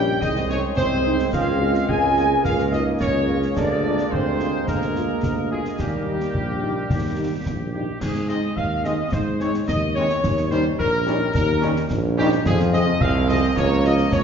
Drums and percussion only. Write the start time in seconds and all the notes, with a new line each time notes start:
0.22 concert bass drum, snare
0.36 snare
0.50 snare
0.77 concert bass drum, snare
1.19 snare
1.33 concert bass drum, snare, crash
1.75 snare
1.89 concert bass drum
2.17 snare
2.45 concert bass drum, snare
2.59 snare
2.73 snare
3.01 concert bass drum, snare
3.42 snare
3.56 concert bass drum, snare, crash
3.98 snare
4.12 concert bass drum
4.40 snare
4.68 concert bass drum, snare
4.82 snare
4.96 snare
5.23 concert bass drum, snare
5.65 snare
5.79 concert bass drum, snare, crash
6.21 snare
6.34 concert bass drum
6.90 concert bass drum, snare
7.46 concert bass drum, snare
8.01 concert bass drum, snare, crash
8.15 snare
8.29 snare
8.57 concert bass drum
8.85 snare
9.12 concert bass drum, snare
9.40 snare
9.54 snare
9.68 concert bass drum, snare
10.10 snare
10.24 concert bass drum, snare, crash
10.37 snare
10.51 snare
10.79 concert bass drum
11.07 snare
11.35 concert bass drum, snare
11.62 snare
11.76 snare
11.90 concert bass drum, snare
12.32 snare
12.46 concert bass drum, snare, crash
12.60 snare
12.73 snare
13.01 concert bass drum
13.29 snare
13.57 concert bass drum, snare
13.85 snare
13.98 snare
14.12 concert bass drum, snare